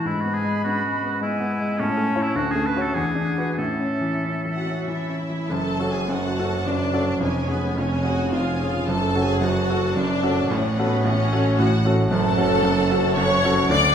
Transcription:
0.05 grand piano G#2, clarinet D4, oboe E4, flute B5
0.21 grand piano B3, oboe F#4
0.34 oboe G#4
0.44 grand piano G#3
0.64 grand piano B3, clarinet C#4, oboe F#4
0.83 grand piano G#3
1.03 grand piano B3
1.21 grand piano G#3, clarinet B3, oboe E4, flute G#5
1.40 grand piano B3
1.60 grand piano G#3
1.78 grand piano A2, clarinet C#4, oboe C#4, flute A5
1.97 grand piano A3
2.16 grand piano E4 C#5
2.22 oboe E4
2.35 grand piano D2, clarinet C#4, oboe F#4, flute A5
2.51 oboe G#4
2.56 grand piano A3
2.66 oboe B4
2.76 grand piano F#4 C#5
2.81 oboe A4
2.94 grand piano E2, clarinet D4, oboe G#4, flute F#5
3.15 grand piano D4
3.38 grand piano F#4 B4
3.58 grand piano A2, clarinet C#4, oboe A4, flute E5
3.80 grand piano C#4
4.01 grand piano E3
4.25 grand piano C#4
4.45 grand piano E3
4.53 viola section F#4, violin section F#5
4.66 grand piano C#4
4.88 grand piano E3, viola section E4, violin section E5
5.09 grand piano C#4
5.30 grand piano E3
5.50 grand piano F#1 F#2, double bass section F#1, cello section F#2, viola section A4, violin section A5
5.79 grand piano C#4 F#4 A4
5.90 viola section G#4, violin section G#5
6.09 grand piano F#1 F#2, viola section F#4, violin section F#5 A5
6.39 grand piano C#4 F#4 A4
6.66 grand piano F#1 F#2, viola section D4, violin section D5
6.93 grand piano C#4 F#4 A4
7.20 grand piano F1 F2, double bass section F1, cello section F2, viola section C#4, violin section C#5 G#5
7.48 viola section B3, grand piano C#4 G#4, violin section B4
7.76 grand piano F1 F2, viola section C#4, violin section C#5 G#5
8.04 grand piano C#4 G#4, viola section F#4, violin section F#5
8.31 grand piano F1 F2, viola section F4, violin section F5 G#5
8.60 grand piano C#4 G#4
8.85 double bass section F#1, grand piano F#1 F#2, cello section F#2, viola section A4, violin section A5
9.15 grand piano C#4 F#4 A4
9.21 viola section G#4, violin section G#5
9.39 grand piano F#1 F#2, viola section F#4, violin section F#5 A5
9.69 grand piano C#4 F#4 A4
9.94 grand piano F#1 F#2, viola section D4, violin section D5
10.23 grand piano C#4 F#4 A4
10.49 double bass section A1, grand piano A1 A2, cello section A2, viola section C#4, violin section C#5 F#5
10.76 viola section B3, grand piano C#4 F#4 A4, violin section B4
11.02 grand piano A1 A2, viola section C#4, violin section C#5 F#5
11.33 grand piano C#4 F#4 A4
11.57 grand piano A1 A2, viola section F#4, violin section F#5
11.85 grand piano C#4 F#4 A4
12.09 double bass section F#1, grand piano F#1 F#2, cello section F#2, viola section A4, violin section F#5 A5
12.37 grand piano C#4 F#4 A4
12.63 grand piano F#1 F#2
12.90 grand piano C#4 F#4 A4
13.16 grand piano F#1 F#2, viola section C#5, violin section F#5 C#6
13.44 grand piano C#4 F#4 A4
13.70 grand piano D2 D3, cello section D2, double bass section D2, viola section D5, violin section F#5 D6

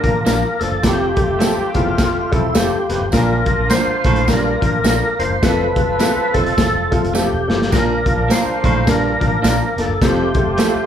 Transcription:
Already playing: horn section D3 A#3 F4, tonewheel organ A#4 F5 D6
0.03 fingered electric bass A1, grand piano F3 A#3 D4 A#4, kick, closed hi-hat
0.25 fingered electric bass A#1, grand piano F3 A#3 D4 A#4, clean electric guitar A#3 D4 F4 A#4, snare, closed hi-hat, tambourine
0.60 fingered electric bass F1, grand piano F3 A#3 D4 C5, tonewheel organ A4, snare, closed hi-hat
0.72 fingered electric bass G1
0.83 fingered electric bass F1, baritone saxophone F2, horn section C3 A3 G4, grand piano F3 A3 C4 A4, tonewheel organ G4 A4 C6, kick, snare, closed hi-hat, tambourine
1.16 grand piano F3 A3 C4 A4, kick, closed hi-hat
1.29 fingered electric bass F1
1.39 grand piano F3 A3 C4 A4, clean electric guitar A3 C4 F4 A4, snare, closed hi-hat, tambourine
1.57 muted fingered electric bass stroke
1.74 fingered electric bass F1, baritone saxophone E2, grand piano F3 A3 C4 A4, tonewheel organ F4, kick, closed hi-hat
1.98 grand piano F3 A3 C4 A4, kick, snare, closed hi-hat, tambourine
2.31 fingered electric bass E1, grand piano F3 A3 C4 A4, tonewheel organ E4, kick, closed hi-hat
2.55 fingered electric bass F1, grand piano F3 A3 C4 A4, clean electric guitar A3 C4 F4 A4, tonewheel organ G4, snare, closed hi-hat, tambourine
2.89 fingered electric bass F1, grand piano F3 A3 C4 B4, snare, closed hi-hat
3.01 fingered electric bass G1
3.12 fingered electric bass A#1, baritone saxophone A#2, horn section D3 A#3 F4, grand piano F3 A#3 D4 A#4, tonewheel organ A#4 D6, kick, snare, closed hi-hat, tambourine
3.46 grand piano F3 A#3 D4 A#4, kick, closed hi-hat
3.58 fingered electric bass A#1
3.70 grand piano F3 A#3 D4 C5, clean electric guitar A#3 D4 F4 A#4, tonewheel organ C5, snare, closed hi-hat, tambourine
3.87 muted fingered electric bass stroke
4.04 fingered electric bass A#1, baritone saxophone A2, grand piano F3 A#3 D4 A#4, kick, closed hi-hat
4.16 closed hi-hat
4.28 baritone saxophone G2, grand piano F3 A#3 D4 A#4, tonewheel organ A#4, kick, snare, closed hi-hat, tambourine
4.61 fingered electric bass A1, grand piano F3 A#3 D4 A#4, kick, closed hi-hat
4.84 fingered electric bass A#1, grand piano F3 A#3 D4 A4, clean electric guitar A#3 D4 F4 A#4, snare, closed hi-hat, tambourine
5.19 fingered electric bass F1, grand piano F3 A#3 D4 A#4, tonewheel organ C5, closed hi-hat
5.30 fingered electric bass G1
5.42 fingered electric bass F1, baritone saxophone F2, horn section F3 C4 A4, grand piano F3 A3 C4 A4, tonewheel organ A4 B4, kick, snare, closed hi-hat, tambourine
5.76 grand piano F3 A3 C4 A4, kick, closed hi-hat
5.87 fingered electric bass F1
5.99 grand piano F3 A3 C4 A4, clean electric guitar A3 C4 F4 A4, snare, closed hi-hat, tambourine
6.16 muted fingered electric bass stroke
6.34 fingered electric bass F1, baritone saxophone F2, grand piano F3 A3 C4 A4, tonewheel organ A4, kick, closed hi-hat
6.46 closed hi-hat
6.57 fingered electric bass E1, grand piano F3 A3 C4 A4, kick, snare, closed hi-hat, tambourine
6.73 fingered electric bass F1
6.91 grand piano F3 A3 C4 A4, tonewheel organ F4, kick, closed hi-hat
7.03 fingered electric bass F1, closed hi-hat
7.14 grand piano F3 A3 C4 A4, clean electric guitar A3 C4 F4 A4, tonewheel organ G4, snare, tambourine
7.32 fingered electric bass E1
7.48 fingered electric bass G1, grand piano F3 A3 C4 A4, snare
7.62 snare
7.71 fingered electric bass A#1, baritone saxophone A#2, grand piano F3 A#3 D4 A#4, horn section F3 D4 A#4, tonewheel organ A#4 D6, kick, snare, closed hi-hat, tambourine
8.06 grand piano F3 A#3 D4 F4, kick, closed hi-hat
8.18 fingered electric bass A#1
8.29 grand piano F3 A#3 D4 A#4, clean electric guitar A#3 D4 F4 A#4, tonewheel organ C5, snare, closed hi-hat, tambourine
8.46 muted fingered electric bass stroke
8.63 fingered electric bass A#1, baritone saxophone A2, grand piano F3 A#3 D4 A#4, kick, closed hi-hat
8.87 baritone saxophone G2, grand piano F3 A#3 D4 A#4, tonewheel organ A#4, kick, snare, closed hi-hat, tambourine
9.20 fingered electric bass A1, grand piano F3 A#3 D4 A#4, kick, closed hi-hat
9.42 fingered electric bass A#1, grand piano F3 A#3 D4 A#4, clean electric guitar A#3 D4 F4 A#4, snare, closed hi-hat, tambourine
9.77 fingered electric bass F1, grand piano F3 A#3 D4 A#4, tonewheel organ A4, snare, closed hi-hat
9.89 fingered electric bass G1
10.01 fingered electric bass F1, baritone saxophone F2, grand piano F3 A3 C4 A4, horn section A3 F4 C5, tonewheel organ G4 A4 F5 C6, kick, snare, closed hi-hat, tambourine
10.34 grand piano F3 A3 C4 A4, kick, closed hi-hat
10.47 fingered electric bass F1
10.58 grand piano F3 A3 C4 A4, clean electric guitar A3 C4 F4 A4, snare, closed hi-hat, tambourine
10.75 muted fingered electric bass stroke

